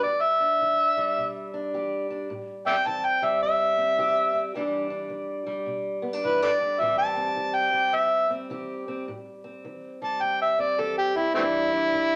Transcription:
Already playing: G3
0.03 E2 D5
0.22 E5
0.40 D4
0.61 E3
0.97 G3
1.17 B2
1.54 D4
1.74 E3 G4
2.10 D4
2.30 A2
2.66 C4 D5 E5 G5
2.86 E3 A5
3.05 G5
3.22 G3 E5
3.42 E2 E5
3.78 C4
3.98 E3 G4
4.35 C4
4.54 E2 E3 G3 D4 G4
4.90 D4
5.09 E3
5.46 G3
5.66 B2
6.02 B3
6.13 D4
6.24 E3 E4 B4
6.42 G4 A4 B4 D5
6.61 D4
6.80 A2 E3 G3 C4 G4 E5
6.98 A5
7.16 C4
7.36 E3
7.55 G5
7.73 G3
7.93 E2 E5
8.30 C4
8.50 E3 G4
8.88 C4
9.08 A2
9.44 C4
9.65 E3
10.02 G3 A5
10.21 E2 G5
10.42 E5
10.59 C4 D5
10.78 E3 G4 A4
10.98 G4
11.16 C4 E4
11.35 E2 E3 G3 A3 C4 D4 E4
11.73 D4
11.94 E3

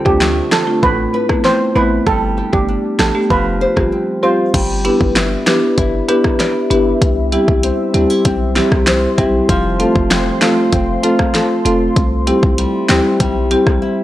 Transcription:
Already playing: D3 C4
0.05 D2 A3 C4 D4 F4 G4, kick
0.21 A3, finger snap, snare
0.52 C4 D4 F4 A4, finger snap, snare
0.67 A3 C4 D4 F4
0.83 A1 A2 B4, kick
1.13 C4 E4 B4
1.29 A3 B3 C4 E4, kick, cross-stick
1.44 C4 C5, snare
1.75 A1 A3 B3 C4 E4 B4
2.07 G1 G3 A4, kick
2.37 D4 G4
2.53 G1 A3 B3 D4 G4, kick
2.68 D4
2.99 A1 D4 G4 A4, finger snap, snare
3.15 A3 B3 D4 G4
3.30 F1 F3 B4, kick
3.61 F4 G4 C5
3.76 G1 G3 C4 F4 G4, kick, cross-stick
3.92 C4
4.23 G3 C4 F4 G4 C5
4.54 G1 G3 G4 D5 E5 B5, kick, closed hi-hat, crash
4.85 B3 D4 E4 G4 B4, closed hi-hat
5.01 G1, kick
5.16 E4, finger snap, snare, closed hi-hat
5.47 B3 D4 E4 G4 B4, finger snap, snare, closed hi-hat
5.78 G1 E4, kick, closed hi-hat
6.08 B3 D4 E4 G4 B4, closed hi-hat
6.24 kick, cross-stick
6.40 D5, snare, closed hi-hat
6.70 G1 B3 D4 E4 G4 B4, closed hi-hat
7.02 C2 C5 C6, kick, closed hi-hat
7.32 G3 C4 E4 G4, closed hi-hat
7.48 C2, kick
7.63 C4, closed hi-hat
7.94 D2 G3 C4 D4 E4 G4, closed hi-hat
8.10 E4
8.25 B1 C4, kick, closed hi-hat
8.56 G3 C4 E4 G4, snare, closed hi-hat
8.72 C2, kick, cross-stick
8.87 C5, finger snap, snare, closed hi-hat
9.18 B1 G3 C4 E4 G4, kick, closed hi-hat
9.49 F1 F3 A4 F5, kick, closed hi-hat
9.80 A3 C4 F4 A4, closed hi-hat
9.95 F1, kick
10.11 C4, finger snap, snare, closed hi-hat
10.41 A3 C4 F4 A4, finger snap, snare, closed hi-hat
10.72 F1 C4, kick, closed hi-hat
11.03 A3 C4 F4 A4, closed hi-hat
11.19 kick, cross-stick
11.34 A4, snare, closed hi-hat
11.65 F1 A3 C4 F4 A4, closed hi-hat
11.96 C2 G4 E5, kick, closed hi-hat
12.27 G3 C4 E4 G4, closed hi-hat
12.43 C2, kick
12.58 G3, closed hi-hat
12.89 D2 G3 C4 E4 G4, finger snap, snare, closed hi-hat
13.20 B1 G3, kick, closed hi-hat
13.51 G3 C4 E4 G4, closed hi-hat
13.67 C2, kick, cross-stick
13.82 E4

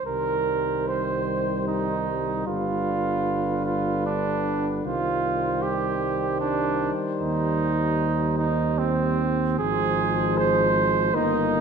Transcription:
0.05 C2 D#3 G3 A#4 C5
0.88 C5
1.68 D#4
2.47 G1 D3 F4 B4
3.66 F4
4.06 D4
4.84 C2 D#3 G3 F4 C5
5.62 G4
6.41 D4
7.20 D#2 D#4
8.38 D#4
8.78 C4
9.58 G#1 F3 G#3 G#4 C5
10.38 C5
11.14 G1 D#3 A#3 D#4 D#5

